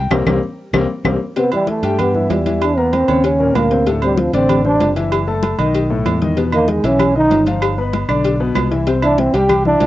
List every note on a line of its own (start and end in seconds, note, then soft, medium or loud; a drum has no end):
0.00 0.10 G5 medium
0.11 0.23 C2 loud
0.11 0.21 G3 medium
0.11 0.21 A#3 medium
0.11 0.21 C4 medium
0.11 cowbell loud
0.11 low conga loud
0.11 high timbale loud
0.11 claves medium
0.26 0.38 C2 loud
0.26 0.37 G3 medium
0.26 0.37 A#3 medium
0.26 0.37 C4 medium
0.26 cowbell loud
0.26 low conga loud
0.26 high timbale loud
0.26 claves medium
0.73 0.85 C2 loud
0.73 0.84 G3 loud
0.73 0.84 A#3 loud
0.73 0.84 C4 loud
0.73 cowbell medium
0.73 low conga loud
0.73 high timbale loud
0.73 claves loud
1.04 1.16 C2 loud
1.04 1.15 G3 loud
1.04 1.15 A#3 loud
1.04 1.15 C4 medium
1.04 cowbell loud
1.04 low conga loud
1.04 high timbale loud
1.04 claves loud
1.36 1.49 C3 medium
1.36 1.52 B3 medium
1.36 1.50 C4 medium
1.36 1.50 C5 medium
1.36 cowbell loud
1.36 high conga soft
1.36 low agogo medium
1.52 1.78 E3 medium
1.52 1.70 G3 medium
1.52 1.78 E4 medium
1.52 1.78 E5 medium
1.52 high conga soft
1.52 low agogo loud
1.67 2.01 A3 medium
1.67 cowbell medium
1.67 high conga medium
1.67 low timbale medium
1.83 2.27 G2 medium
1.83 2.09 G3 medium
1.83 2.09 G4 medium
1.83 2.09 G5 medium
1.83 cowbell medium
1.83 low agogo medium
1.99 2.33 B3 medium
1.99 cowbell loud
1.99 high conga soft
1.99 low conga medium
1.99 low agogo loud
2.14 2.40 E3 medium
2.14 2.41 E4 medium
2.14 2.41 E5 medium
2.14 high conga soft
2.14 low conga medium
2.29 3.03 E2 medium
2.29 2.64 G3 medium
2.29 cowbell medium
2.29 high conga medium
2.29 low timbale medium
2.29 low agogo medium
2.46 2.72 E3 medium
2.46 2.72 E4 medium
2.46 2.72 E5 medium
2.46 cowbell medium
2.46 high conga medium
2.46 low agogo medium
2.62 2.80 D4 medium
2.62 cowbell loud
2.62 low agogo loud
2.77 3.03 A#3 medium
2.77 2.96 B3 loud
2.77 3.03 A#4 medium
2.77 3.03 A#5 medium
2.77 high conga soft
2.93 3.27 C4 medium
2.93 cowbell medium
2.93 high conga medium
2.93 low timbale medium
2.93 low agogo medium
3.08 3.52 D#2 medium
3.08 3.34 C#3 medium
3.08 3.35 C#4 medium
3.08 3.35 C#5 medium
3.08 high conga soft
3.08 low agogo loud
3.24 3.58 C#4 medium
3.24 cowbell loud
3.24 high conga soft
3.24 low agogo medium
3.40 3.66 A#2 medium
3.40 3.66 A#3 medium
3.40 3.66 A#4 medium
3.40 high conga soft
3.55 4.28 D2 medium
3.55 3.87 A#3 medium
3.55 cowbell medium
3.55 high conga medium
3.55 low timbale medium
3.55 low agogo loud
3.71 3.84 C3 medium
3.71 3.84 C4 medium
3.71 3.84 C5 medium
3.71 cowbell medium
3.86 4.00 A2 medium
3.86 4.00 A3 medium
3.86 4.00 A4 medium
3.86 cowbell loud
3.86 high conga soft
3.86 low agogo medium
4.02 4.28 C3 medium
4.02 4.21 G3 medium
4.02 4.28 C4 medium
4.02 4.28 C5 medium
4.02 high conga soft
4.02 low agogo medium
4.17 4.34 F3 medium
4.17 cowbell medium
4.17 high conga loud
4.17 low timbale medium
4.33 4.77 A1 medium
4.33 4.59 D3 medium
4.33 4.63 C4 medium
4.33 4.59 D4 medium
4.33 4.60 D5 medium
4.33 cowbell medium
4.33 low agogo medium
4.49 cowbell loud
4.49 high conga soft
4.49 low conga medium
4.49 low agogo loud
4.65 4.90 C3 medium
4.65 4.91 C4 medium
4.65 4.94 D4 loud
4.65 4.91 C5 medium
4.65 high conga soft
4.65 low conga medium
4.80 5.53 F#1 medium
4.80 cowbell medium
4.80 high conga medium
4.80 low timbale medium
4.80 low agogo medium
4.96 5.22 E3 medium
4.96 5.22 E4 medium
4.96 5.22 E5 medium
4.96 cowbell medium
4.96 low agogo medium
5.11 cowbell loud
5.11 high conga soft
5.11 low agogo loud
5.27 5.53 A3 medium
5.27 5.53 A4 medium
5.27 5.53 A5 medium
5.27 high conga soft
5.43 cowbell medium
5.43 high conga loud
5.43 low timbale medium
5.43 low agogo medium
5.58 6.02 B1 medium
5.58 5.84 D#3 medium
5.58 5.84 D#4 medium
5.58 5.84 D#5 medium
5.58 high conga soft
5.58 low agogo loud
5.74 cowbell loud
5.74 high conga soft
5.74 low agogo medium
5.90 6.16 A2 medium
5.90 6.16 A3 medium
5.90 6.16 A4 medium
5.90 high conga soft
6.05 6.78 E2 medium
6.05 cowbell medium
6.05 high conga medium
6.05 low timbale medium
6.05 low agogo loud
6.21 6.34 D#3 medium
6.21 6.34 D#4 medium
6.21 6.35 D#5 medium
6.21 cowbell medium
6.21 high conga medium
6.37 6.50 B2 medium
6.37 6.50 B3 medium
6.37 6.50 B4 medium
6.37 cowbell medium
6.37 high conga soft
6.37 low agogo medium
6.52 6.78 D#3 medium
6.52 6.72 A#3 loud
6.52 6.78 D#4 medium
6.52 6.79 D#5 medium
6.52 high conga soft
6.52 low agogo loud
6.52 claves medium
6.68 6.87 G#3 medium
6.68 cowbell medium
6.68 high conga medium
6.68 low timbale medium
6.83 7.27 B1 medium
6.83 7.10 E3 medium
6.83 7.16 C#4 loud
6.83 7.10 E4 medium
6.83 7.10 E5 medium
6.83 cowbell medium
6.83 low agogo medium
6.99 cowbell loud
6.99 high conga soft
6.99 low conga medium
6.99 low agogo loud
6.99 claves medium
7.15 7.41 D#3 medium
7.15 7.41 D#4 medium
7.15 7.45 D#4 loud
7.15 7.41 D#5 medium
7.15 high conga soft
7.30 8.03 G1 medium
7.30 cowbell medium
7.30 high conga medium
7.30 low timbale medium
7.30 low agogo medium
7.46 7.72 F3 medium
7.46 7.72 F4 medium
7.46 7.73 F5 medium
7.46 cowbell medium
7.46 high conga medium
7.46 low agogo medium
7.62 cowbell loud
7.62 low agogo loud
7.62 claves medium
7.78 8.04 B3 medium
7.78 8.04 B4 medium
7.78 8.04 B5 medium
7.78 high conga soft
7.93 cowbell medium
7.93 high conga loud
7.93 low timbale medium
7.93 low agogo medium
8.08 8.52 B1 medium
8.08 8.35 D3 medium
8.08 8.35 D4 medium
8.08 8.35 D5 medium
8.08 high conga soft
8.08 low agogo loud
8.08 claves medium
8.24 cowbell loud
8.24 high conga soft
8.24 low agogo medium
8.40 8.66 B2 medium
8.40 8.66 B3 medium
8.40 8.66 B4 medium
8.40 high conga soft
8.55 9.28 C2 medium
8.55 cowbell medium
8.55 high conga medium
8.55 low timbale medium
8.55 low agogo loud
8.55 claves medium
8.71 8.84 E3 medium
8.71 8.84 E4 medium
8.71 8.84 E5 medium
8.71 cowbell medium
8.87 9.00 C3 medium
8.87 9.00 C4 medium
8.87 9.00 C5 medium
8.87 cowbell loud
8.87 high conga soft
8.87 low agogo medium
9.02 9.28 E3 medium
9.02 9.21 D4 loud
9.02 9.29 E4 medium
9.02 9.29 E5 medium
9.02 high conga soft
9.02 low agogo loud
9.02 claves medium
9.18 9.36 C4 medium
9.18 cowbell medium
9.18 high conga loud
9.18 low timbale medium
9.34 9.78 C2 medium
9.34 9.60 G3 medium
9.34 9.60 G4 medium
9.34 9.65 G4 loud
9.34 9.60 G5 medium
9.34 cowbell medium
9.34 low agogo medium
9.49 cowbell loud
9.49 high conga soft
9.49 low conga medium
9.49 low agogo loud
9.49 claves medium
9.65 9.87 E3 medium
9.65 9.87 D4 loud
9.65 9.87 E4 medium
9.65 9.87 E5 medium
9.65 high conga soft
9.65 low conga medium
9.81 9.87 C2 medium
9.81 cowbell medium
9.81 high conga medium
9.81 low timbale medium
9.81 low agogo medium